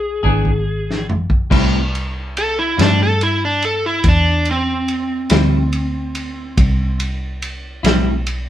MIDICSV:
0, 0, Header, 1, 5, 480
1, 0, Start_track
1, 0, Key_signature, 0, "minor"
1, 0, Tempo, 845070
1, 854, Time_signature, 12, 3, 24, 8
1, 4823, End_track
2, 0, Start_track
2, 0, Title_t, "Electric slide guitar"
2, 0, Program_c, 0, 29
2, 0, Note_on_c, 0, 68, 72
2, 600, Note_off_c, 0, 68, 0
2, 1354, Note_on_c, 0, 69, 80
2, 1461, Note_off_c, 0, 69, 0
2, 1470, Note_on_c, 0, 64, 64
2, 1579, Note_off_c, 0, 64, 0
2, 1598, Note_on_c, 0, 62, 82
2, 1703, Note_off_c, 0, 62, 0
2, 1718, Note_on_c, 0, 69, 80
2, 1823, Note_off_c, 0, 69, 0
2, 1834, Note_on_c, 0, 64, 76
2, 1941, Note_off_c, 0, 64, 0
2, 1959, Note_on_c, 0, 62, 74
2, 2064, Note_off_c, 0, 62, 0
2, 2073, Note_on_c, 0, 69, 77
2, 2181, Note_off_c, 0, 69, 0
2, 2193, Note_on_c, 0, 64, 84
2, 2301, Note_off_c, 0, 64, 0
2, 2321, Note_on_c, 0, 62, 74
2, 2541, Note_off_c, 0, 62, 0
2, 2560, Note_on_c, 0, 60, 81
2, 3964, Note_off_c, 0, 60, 0
2, 4823, End_track
3, 0, Start_track
3, 0, Title_t, "Clean electric guitar"
3, 0, Program_c, 1, 27
3, 130, Note_on_c, 1, 68, 62
3, 136, Note_on_c, 1, 62, 57
3, 140, Note_on_c, 1, 59, 59
3, 145, Note_on_c, 1, 52, 48
3, 276, Note_off_c, 1, 68, 0
3, 278, Note_off_c, 1, 62, 0
3, 281, Note_off_c, 1, 59, 0
3, 283, Note_off_c, 1, 52, 0
3, 853, Note_on_c, 1, 45, 69
3, 855, Note_on_c, 1, 55, 70
3, 857, Note_on_c, 1, 60, 80
3, 860, Note_on_c, 1, 64, 75
3, 998, Note_off_c, 1, 45, 0
3, 998, Note_off_c, 1, 55, 0
3, 1000, Note_off_c, 1, 60, 0
3, 1001, Note_off_c, 1, 64, 0
3, 1574, Note_on_c, 1, 64, 59
3, 1579, Note_on_c, 1, 55, 58
3, 1579, Note_on_c, 1, 60, 59
3, 1583, Note_on_c, 1, 45, 49
3, 1718, Note_off_c, 1, 64, 0
3, 1721, Note_off_c, 1, 55, 0
3, 1721, Note_off_c, 1, 60, 0
3, 1723, Note_off_c, 1, 45, 0
3, 3009, Note_on_c, 1, 60, 60
3, 3009, Note_on_c, 1, 64, 54
3, 3017, Note_on_c, 1, 55, 50
3, 3018, Note_on_c, 1, 45, 48
3, 3156, Note_off_c, 1, 60, 0
3, 3156, Note_off_c, 1, 64, 0
3, 3160, Note_off_c, 1, 45, 0
3, 3160, Note_off_c, 1, 55, 0
3, 4449, Note_on_c, 1, 64, 78
3, 4455, Note_on_c, 1, 60, 66
3, 4457, Note_on_c, 1, 55, 63
3, 4460, Note_on_c, 1, 45, 56
3, 4595, Note_off_c, 1, 64, 0
3, 4598, Note_off_c, 1, 60, 0
3, 4599, Note_off_c, 1, 55, 0
3, 4601, Note_off_c, 1, 45, 0
3, 4823, End_track
4, 0, Start_track
4, 0, Title_t, "Fingered electric bass"
4, 0, Program_c, 2, 33
4, 0, Note_on_c, 2, 35, 70
4, 112, Note_off_c, 2, 35, 0
4, 132, Note_on_c, 2, 32, 74
4, 832, Note_off_c, 2, 32, 0
4, 857, Note_on_c, 2, 36, 73
4, 1555, Note_off_c, 2, 36, 0
4, 1582, Note_on_c, 2, 43, 84
4, 2277, Note_off_c, 2, 43, 0
4, 2294, Note_on_c, 2, 40, 76
4, 2993, Note_off_c, 2, 40, 0
4, 3017, Note_on_c, 2, 38, 83
4, 3714, Note_off_c, 2, 38, 0
4, 3734, Note_on_c, 2, 36, 84
4, 4432, Note_off_c, 2, 36, 0
4, 4454, Note_on_c, 2, 35, 81
4, 4823, Note_off_c, 2, 35, 0
4, 4823, End_track
5, 0, Start_track
5, 0, Title_t, "Drums"
5, 135, Note_on_c, 9, 36, 48
5, 192, Note_off_c, 9, 36, 0
5, 256, Note_on_c, 9, 36, 48
5, 313, Note_off_c, 9, 36, 0
5, 514, Note_on_c, 9, 38, 61
5, 571, Note_off_c, 9, 38, 0
5, 622, Note_on_c, 9, 43, 82
5, 679, Note_off_c, 9, 43, 0
5, 737, Note_on_c, 9, 36, 75
5, 794, Note_off_c, 9, 36, 0
5, 858, Note_on_c, 9, 36, 87
5, 863, Note_on_c, 9, 49, 90
5, 915, Note_off_c, 9, 36, 0
5, 920, Note_off_c, 9, 49, 0
5, 1107, Note_on_c, 9, 51, 55
5, 1164, Note_off_c, 9, 51, 0
5, 1345, Note_on_c, 9, 51, 62
5, 1402, Note_off_c, 9, 51, 0
5, 1586, Note_on_c, 9, 51, 77
5, 1596, Note_on_c, 9, 38, 101
5, 1642, Note_off_c, 9, 51, 0
5, 1653, Note_off_c, 9, 38, 0
5, 1823, Note_on_c, 9, 51, 57
5, 1880, Note_off_c, 9, 51, 0
5, 2058, Note_on_c, 9, 51, 55
5, 2114, Note_off_c, 9, 51, 0
5, 2293, Note_on_c, 9, 51, 72
5, 2295, Note_on_c, 9, 36, 87
5, 2349, Note_off_c, 9, 51, 0
5, 2352, Note_off_c, 9, 36, 0
5, 2529, Note_on_c, 9, 51, 53
5, 2586, Note_off_c, 9, 51, 0
5, 2773, Note_on_c, 9, 51, 55
5, 2829, Note_off_c, 9, 51, 0
5, 3008, Note_on_c, 9, 51, 82
5, 3018, Note_on_c, 9, 38, 107
5, 3065, Note_off_c, 9, 51, 0
5, 3075, Note_off_c, 9, 38, 0
5, 3252, Note_on_c, 9, 51, 54
5, 3309, Note_off_c, 9, 51, 0
5, 3492, Note_on_c, 9, 51, 64
5, 3549, Note_off_c, 9, 51, 0
5, 3734, Note_on_c, 9, 51, 78
5, 3735, Note_on_c, 9, 36, 93
5, 3791, Note_off_c, 9, 51, 0
5, 3792, Note_off_c, 9, 36, 0
5, 3974, Note_on_c, 9, 51, 63
5, 4031, Note_off_c, 9, 51, 0
5, 4216, Note_on_c, 9, 51, 66
5, 4273, Note_off_c, 9, 51, 0
5, 4456, Note_on_c, 9, 51, 81
5, 4466, Note_on_c, 9, 38, 103
5, 4512, Note_off_c, 9, 51, 0
5, 4523, Note_off_c, 9, 38, 0
5, 4695, Note_on_c, 9, 51, 65
5, 4751, Note_off_c, 9, 51, 0
5, 4823, End_track
0, 0, End_of_file